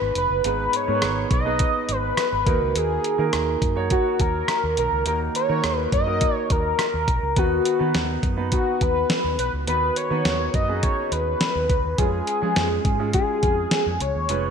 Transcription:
Already playing: grand piano G#2 B3 D#4 G#4 B4, analog synth lead B4
0.02 fingered electric bass G#1
0.15 fingered electric bass F1, analog synth lead B4, closed hi-hat
0.30 fingered electric bass F#1
0.44 fingered electric bass G#1, grand piano G#2 B3 D#4 G#4 B4, analog synth lead B4, closed hi-hat
0.73 analog synth lead C#5, closed hi-hat
0.87 fingered electric bass G#2, grand piano B3 D#4 G#4 A#4
0.95 grand piano B4
1.02 fingered electric bass G#1, cross-stick, closed hi-hat
1.31 fingered electric bass B1, analog synth lead D#5, kick, closed hi-hat
1.45 grand piano B3 D#4 G#4 B4
1.59 kick, closed hi-hat
1.89 fingered electric bass G#1, analog synth lead B4, closed hi-hat
2.17 cross-stick, closed hi-hat
2.33 fingered electric bass G#1
2.46 fingered electric bass D#2, grand piano D#3 A#3 D#4 F#4 A#4, kick, closed hi-hat
2.61 fingered electric bass C#2
2.76 fingered electric bass D#2, analog synth lead G#4, closed hi-hat
3.04 closed hi-hat
3.18 fingered electric bass D#3, grand piano A#3 D#4 F#4 A#4
3.33 fingered electric bass D#2, cross-stick, closed hi-hat
3.62 fingered electric bass F#2, kick, closed hi-hat
3.76 grand piano A#3 D#4 F#4 C#5
3.90 analog synth lead F#4, kick, closed hi-hat
4.20 fingered electric bass D#2, analog synth lead A#4, kick, closed hi-hat
4.48 cross-stick, closed hi-hat
4.64 fingered electric bass D#2
4.77 fingered electric bass B1, grand piano D#3, analog synth lead A#4, closed hi-hat
4.92 fingered electric bass C#2
5.05 fingered electric bass D#2, grand piano A#3 D#4 F#4 A#4, analog synth lead A#4, closed hi-hat
5.35 analog synth lead C#5, closed hi-hat
5.48 fingered electric bass D#3, grand piano A#3 D#4 F#4 A#4
5.64 fingered electric bass D#2, cross-stick, closed hi-hat
5.77 analog synth lead B4
5.92 fingered electric bass F#2, analog synth lead D#5, kick, closed hi-hat
6.06 grand piano A#3 D#4 F#4 A#4
6.21 kick, closed hi-hat
6.34 analog synth lead C#5
6.50 fingered electric bass D#2, analog synth lead A#4, kick, closed hi-hat
6.79 cross-stick, closed hi-hat
6.94 fingered electric bass D#2
7.08 fingered electric bass B1, kick, closed hi-hat
7.23 fingered electric bass C#2
7.36 fingered electric bass D#2, grand piano D#3 B3 D#4 F#4 B4, analog synth lead F#4, kick, closed hi-hat
7.65 closed hi-hat
7.79 fingered electric bass D#3, grand piano B3 D#4 F#4 B4
7.94 fingered electric bass D#2, snare, closed hi-hat
8.23 fingered electric bass F#2, kick, closed hi-hat
8.37 grand piano B3 D#4 F#4 B4
8.52 analog synth lead F#4, kick, closed hi-hat
8.81 fingered electric bass D#2, analog synth lead B4, kick, closed hi-hat
9.10 snare, closed hi-hat
9.24 fingered electric bass D#2
9.39 fingered electric bass B1, analog synth lead B4, closed hi-hat
9.53 fingered electric bass C#2
9.67 fingered electric bass D#2, grand piano D#3 B3 D#4 F#4 B4, analog synth lead B4, closed hi-hat
9.96 analog synth lead C#5, closed hi-hat
10.10 fingered electric bass D#3, grand piano B3 D#4 F#4 B4
10.25 fingered electric bass D#2, snare, closed hi-hat
10.54 fingered electric bass F#2, analog synth lead D#5, kick, closed hi-hat
10.68 grand piano B3 C#4 F#4 G#4
10.75 grand piano D#4
10.83 analog synth lead C#5, kick, closed hi-hat
11.12 fingered electric bass D#2, analog synth lead B4, closed hi-hat
11.41 snare, closed hi-hat
11.55 fingered electric bass D#2
11.70 fingered electric bass C#2, kick, closed hi-hat
11.84 fingered electric bass D#2
11.98 fingered electric bass F2, grand piano G#3 C#4 F4 G#4, analog synth lead G#4, kick, closed hi-hat
12.27 closed hi-hat
12.42 fingered electric bass F3, grand piano G#3 C#4 F4 G#4
12.56 fingered electric bass F2, snare, closed hi-hat
12.85 fingered electric bass G#2, kick, closed hi-hat
12.99 grand piano G#3 C#4 F4 G#4
13.13 analog synth lead G#4, kick, closed hi-hat
13.43 fingered electric bass F2, kick, closed hi-hat
13.71 snare, closed hi-hat
13.86 fingered electric bass F2
14.00 fingered electric bass C#2, analog synth lead C#5, closed hi-hat
14.15 fingered electric bass D#2
14.29 fingered electric bass F1, grand piano G#3 C#4 F4 B4, closed hi-hat

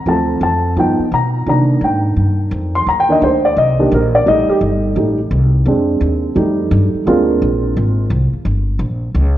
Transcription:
0.06 upright bass D2, upright piano F3 A3 C4 A5
0.41 upright bass F2, upright piano A5
0.77 upright bass G2, upright piano F3 B3 D#4 G5
0.99 muted upright bass stroke
1.12 upright bass B2, upright piano A#5
1.46 upright bass C3, upright piano D#3 A#3 D4 A#5
1.81 upright bass G#2, upright piano G5
2.16 upright bass G2
2.51 upright bass F2
2.75 upright piano C6
2.86 upright bass D#2, upright piano A#5
2.99 upright piano G5
3.08 upright piano D#3 A#3 D4 D#5
3.22 upright bass D2, upright piano C5
3.45 upright piano D5
3.56 upright bass C2, upright piano D#5
3.79 upright piano D#3 A#3 D4 G4
3.91 upright bass A#1, upright piano A#4
4.15 upright piano D5
4.26 upright bass A1, upright piano G3 A3 D#4 D#5
4.49 upright piano G4, muted upright bass stroke
4.61 upright bass G1
4.96 upright bass A1, upright piano G3 A3 D#4
5.31 upright bass C2
5.66 upright bass F2, upright piano G#3 C4 D4
6.01 upright bass D#2
6.36 upright bass F2, upright piano G3 A3 D#4
6.71 upright bass G2
6.94 muted upright bass stroke
7.06 upright bass D2, upright piano G#3 A#3 C4 D4 F4
7.42 upright bass A#1
7.77 upright bass G#1
8.10 upright bass C2
8.33 muted upright bass stroke
8.45 upright bass G1
8.79 upright bass A#1
9.15 upright bass C#2

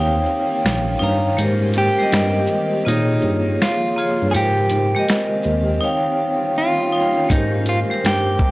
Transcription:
Already playing: tine electric piano D#2, ambient pad D#3 G3 A#3 C#4 F4, vibraphone D#4 C#5 F5 G5
0.25 shaker
0.65 tine electric piano A#1, finger snap, snare, closed hi-hat
0.99 tine electric piano G2, vibraphone D#4 C#5 F5, shaker
1.03 vibraphone A#5
1.37 tine electric piano G#2, vibraphone G#3 G4 A#4 C5, ambient pad C4 G4, closed hi-hat
1.74 closed hi-hat, shaker
1.78 clean electric guitar G4
1.98 vibraphone G3 G4 A#4
2.03 vibraphone D#5
2.12 tine electric piano G2, finger snap, snare, closed hi-hat
2.47 shaker
2.85 tine electric piano A#2, ambient pad C#3 F3 F4, vibraphone A#3 F4 G#4 C#5, clean electric guitar D#4, closed hi-hat
3.21 tine electric piano G2, shaker
3.62 clean electric guitar F4, finger snap, snare, closed hi-hat
3.96 vibraphone A#3 F4 G#4, shaker
4.00 vibraphone C#5
4.22 tine electric piano G2
4.31 tine electric piano G#2, ambient pad D#3 C4 G4, vibraphone G#3 G4, clean electric guitar G#4, closed hi-hat
4.36 clean electric guitar G4, vibraphone A#4 C5
4.69 tine electric piano G#2, closed hi-hat, shaker
4.95 vibraphone G#3 G4 A#4 D#5
5.08 finger snap, snare, closed hi-hat
5.43 tine electric piano D#2, shaker
5.81 ambient pad G3 A#3 C#4 F4, vibraphone D#4 C#5 F5 G5
6.58 clean electric guitar F4
6.92 vibraphone D#4 C#5 F5 G5
7.29 tine electric piano G#2, vibraphone G#3 G4 A#4 C5, ambient pad C4 G4, clean electric guitar D#4, kick, closed hi-hat
7.66 clean electric guitar F4, closed hi-hat, shaker
7.90 vibraphone G3 G4 A#4 C5
8.04 tine electric piano G2, clean electric guitar G4, finger snap, snare, closed hi-hat
8.39 kick, shaker

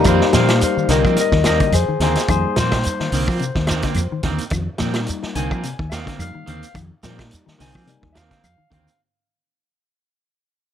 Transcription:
0.04 fingered electric bass F2, clean electric guitar D#3 A#3 C4, tine electric piano G3 A#3 D#4 E5, kick, closed hi-hat, claves, shekere
0.08 tine electric piano C5 F5
0.21 snare
0.33 fingered electric bass A#2, clean electric guitar D#3 F3 A#3 C4, tine electric piano C5 F5, snare, closed hi-hat, shekere
0.48 snare, closed hi-hat, claves, shekere
0.61 tine electric piano C5 F5, closed hi-hat, shekere
0.77 clean electric guitar D#3, muted fingered electric bass stroke, shekere
0.89 fingered electric bass C2, clean electric guitar D3 D#3 A#3 C4, tine electric piano A#4 D#5, snare, closed hi-hat, shekere
1.05 fingered electric bass F3, clean electric guitar A#3 C4, kick, claves, shekere
1.16 tine electric piano A#4, muted clean electric guitar stroke, closed hi-hat, shekere
1.21 tine electric piano D#5
1.31 fingered electric bass D#2, clean electric guitar D#3, kick, snare
1.44 clean electric guitar D#3 A#3 C4, tine electric piano G3 A#3 D#4 A#4 D#5, snare, closed hi-hat, claves, shekere
1.60 clean electric guitar D3, kick, closed hi-hat, shekere
1.72 fingered electric bass F2, tine electric piano G#4 C5, closed hi-hat, claves, shekere
1.89 clean electric guitar D#3, muted fingered electric bass stroke
2.00 fingered electric bass D#2, clean electric guitar D3 D#3 A#3 C4, tine electric piano G#4 C5, snare, closed hi-hat
2.15 snare, closed hi-hat, shekere
2.28 fingered electric bass F2, clean electric guitar D#3, tine electric piano G3 A#3 D#4 G#4 C5, kick, closed hi-hat, claves, shekere
2.56 fingered electric bass A#2, clean electric guitar D#3 F3 A#3 C4, tine electric piano B4, snare, closed hi-hat, shekere
2.60 tine electric piano C5
2.71 kick, snare, closed hi-hat, claves, shekere
2.83 closed hi-hat, shekere
2.99 clean electric guitar D#3, muted fingered electric bass stroke, snare, shekere
3.12 fingered electric bass C2, clean electric guitar D3 D#3 A#3 C4, open hi-hat, shekere
3.28 fingered electric bass F3, clean electric guitar A#3 C4, kick, claves, shekere
3.39 clean electric guitar C3, closed hi-hat, shekere
3.55 fingered electric bass D#2, clean electric guitar D#3, kick, snare
3.67 clean electric guitar D#3 A#3 C4, snare, closed hi-hat, claves, shekere
3.82 clean electric guitar D3 A#3 C4, kick, snare, closed hi-hat, shekere
3.94 fingered electric bass F2, closed hi-hat, claves, shekere
4.11 clean electric guitar D#3, muted fingered electric bass stroke
4.23 fingered electric bass D#2, clean electric guitar D3 D#3 A#3 C4, kick, snare, closed hi-hat
4.38 closed hi-hat, shekere
4.50 fingered electric bass F2, clean electric guitar D#3, kick, closed hi-hat, claves, shekere
4.78 fingered electric bass A#2, clean electric guitar D#3 F3 A#3, tine electric piano G3 A#3 D#4, snare, closed hi-hat, shekere
4.82 clean electric guitar C4
4.94 snare, closed hi-hat, claves, shekere
5.07 closed hi-hat, shekere
5.22 muted clean electric guitar stroke, muted fingered electric bass stroke, snare, shekere
5.35 fingered electric bass C2, clean electric guitar D3 D#3 A#3 C4, tine electric piano G#5, closed hi-hat, shekere
5.51 fingered electric bass F3, clean electric guitar A#3 C4, kick, claves, shekere
5.63 clean electric guitar C3, closed hi-hat, shekere
5.79 fingered electric bass D#2, clean electric guitar D#3, kick
5.90 clean electric guitar D#3 A#3, tine electric piano E5 F5, snare, closed hi-hat, claves, shekere
5.94 clean electric guitar C4
6.06 clean electric guitar D3 A#3 C4, kick, snare, closed hi-hat, shekere
6.19 fingered electric bass F2, tine electric piano G3 A#3 D#4 F5, closed hi-hat, claves, shekere
6.35 clean electric guitar D#3
6.46 fingered electric bass D#2, clean electric guitar D3 D#3 A#3 C4, tine electric piano F5, closed hi-hat
6.63 closed hi-hat, shekere
6.74 fingered electric bass F2, clean electric guitar D#3, kick, closed hi-hat, claves, shekere
7.03 fingered electric bass A#2, clean electric guitar D#3 F3 A#3 C4, tine electric piano G3 A#3 D#4, snare, closed hi-hat, shekere
7.19 kick, snare, closed hi-hat, claves, shekere
7.31 closed hi-hat, shekere
7.46 clean electric guitar D#3, muted fingered electric bass stroke, snare, shekere
7.59 fingered electric bass C2, clean electric guitar D3 D#3 C4, tine electric piano G#5, snare, open hi-hat, shekere
7.75 fingered electric bass F3, clean electric guitar A#3 C4, kick, claves, shekere
7.86 clean electric guitar C3, tine electric piano G3 A#3 D#4, closed hi-hat, shekere
8.02 fingered electric bass D#2, clean electric guitar D#3, kick
8.13 clean electric guitar D#3 A#3 C4, tine electric piano E5, snare, closed hi-hat
8.17 tine electric piano F5, claves, shekere
8.30 clean electric guitar D3 A#3 C4, kick, snare, closed hi-hat, shekere
8.44 fingered electric bass F2, tine electric piano F5, closed hi-hat, claves, shekere
8.58 clean electric guitar D#3
8.70 fingered electric bass D#2, clean electric guitar D3 D#3 A#3 C4, tine electric piano F5, kick, closed hi-hat
8.88 closed hi-hat, shekere

